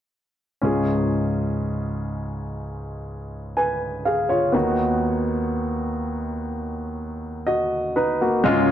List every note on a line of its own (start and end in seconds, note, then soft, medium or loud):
0.62 4.50 C#2 soft
0.62 4.50 G#2 soft
0.62 4.01 C#4 soft
0.62 3.53 F4 soft
0.62 3.54 G#4 soft
3.57 4.03 B4 soft
3.57 4.03 G#5 soft
4.05 4.29 G#4 soft
4.05 4.29 F5 soft
4.29 4.76 F4 soft
4.29 4.76 C#5 soft
4.52 8.41 D#2 soft
4.52 8.41 D#3 soft
4.52 7.42 B3 soft
4.52 7.43 D#4 soft
4.52 7.43 F#4 soft
7.47 7.94 F#4 soft
7.47 7.94 D#5 soft
7.96 8.20 D#4 soft
7.96 8.20 B4 soft
8.21 8.68 A#3 soft
8.21 8.68 F#4 soft
8.44 8.71 C#2 soft
8.44 8.71 G#2 soft
8.44 8.71 G#3 medium
8.44 8.71 C#4 medium
8.44 8.71 F4 medium
8.44 8.71 C#5 medium